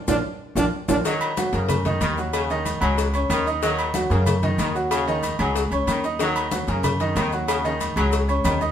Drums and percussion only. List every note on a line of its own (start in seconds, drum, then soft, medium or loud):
0.08 low bongo loud
0.08 high conga loud
0.08 high timbale medium
0.08 maracas medium
0.56 low bongo loud
0.56 high conga loud
0.56 high timbale medium
0.56 maracas medium
0.89 low bongo loud
0.89 high conga loud
0.89 high timbale medium
0.89 maracas loud
1.05 cowbell loud
1.05 high conga soft
1.05 maracas medium
1.21 high conga soft
1.21 low agogo loud
1.21 maracas soft
1.37 cowbell medium
1.37 high conga loud
1.37 low agogo medium
1.37 maracas medium
1.53 cowbell medium
1.53 high conga soft
1.53 maracas soft
1.69 cowbell loud
1.69 high conga soft
1.69 low conga loud
1.69 low agogo loud
1.69 maracas medium
1.85 cowbell medium
1.85 high conga soft
1.85 low conga medium
1.85 maracas soft
2.01 cowbell medium
2.01 high conga medium
2.01 low agogo medium
2.01 maracas medium
2.18 high conga soft
2.18 maracas soft
2.33 cowbell loud
2.33 high conga soft
2.33 low agogo loud
2.33 maracas medium
2.49 high conga soft
2.49 maracas soft
2.65 cowbell medium
2.65 high conga medium
2.65 low agogo medium
2.65 maracas medium
2.82 high conga soft
2.82 low agogo loud
2.82 maracas soft
2.98 cowbell loud
2.98 high conga soft
2.98 maracas medium
3.14 high conga soft
3.14 low agogo medium
3.14 maracas soft
3.30 cowbell medium
3.30 high conga medium
3.30 low agogo loud
3.30 maracas medium
3.47 maracas soft
3.62 cowbell loud
3.62 high conga soft
3.62 maracas medium
3.78 high conga soft
3.78 low agogo loud
3.78 maracas soft
3.94 cowbell medium
3.94 high conga loud
3.94 low agogo medium
3.94 maracas medium
4.10 cowbell medium
4.10 high conga soft
4.10 maracas soft
4.26 cowbell loud
4.26 high conga soft
4.26 low conga medium
4.26 low agogo loud
4.26 maracas medium
4.43 cowbell medium
4.43 high conga soft
4.43 low conga medium
4.43 maracas soft
4.59 cowbell medium
4.59 high conga medium
4.59 low agogo medium
4.59 maracas medium
4.75 high conga soft
4.75 maracas soft
4.91 cowbell loud
4.91 high conga soft
4.91 low agogo loud
4.91 maracas medium
5.07 high conga soft
5.07 maracas soft
5.23 cowbell medium
5.23 high conga medium
5.23 low agogo medium
5.23 maracas medium
5.39 high conga soft
5.39 low agogo loud
5.39 maracas soft
5.55 cowbell loud
5.55 high conga soft
5.55 maracas medium
5.71 high conga soft
5.71 low agogo medium
5.71 maracas soft
5.87 cowbell medium
5.87 high conga medium
5.87 low agogo loud
5.87 maracas medium
6.04 maracas soft
6.19 cowbell loud
6.19 high conga soft
6.19 maracas medium
6.36 high conga soft
6.36 low agogo loud
6.36 maracas soft
6.51 cowbell medium
6.51 high conga loud
6.51 low agogo medium
6.51 maracas medium
6.67 cowbell medium
6.67 high conga soft
6.67 maracas soft
6.83 cowbell loud
6.83 high conga soft
6.83 low conga loud
6.83 low agogo loud
6.83 maracas medium
6.99 cowbell medium
6.99 high conga soft
6.99 maracas soft
7.16 cowbell medium
7.16 high conga medium
7.16 low timbale medium
7.16 low agogo medium
7.16 maracas medium
7.32 high conga soft
7.32 maracas soft
7.48 cowbell loud
7.48 high conga soft
7.48 low agogo loud
7.48 maracas medium
7.65 high conga soft
7.65 maracas soft
7.81 cowbell medium
7.81 high conga medium
7.81 low agogo medium
7.81 maracas medium
7.97 high conga soft
7.97 low agogo loud
7.97 maracas soft
8.12 cowbell loud
8.12 high conga soft
8.12 maracas medium
8.29 high conga soft
8.29 low agogo medium
8.29 maracas soft
8.45 cowbell medium
8.45 high conga medium
8.45 low timbale medium
8.45 low agogo loud
8.45 maracas medium
8.61 high conga medium
8.61 maracas soft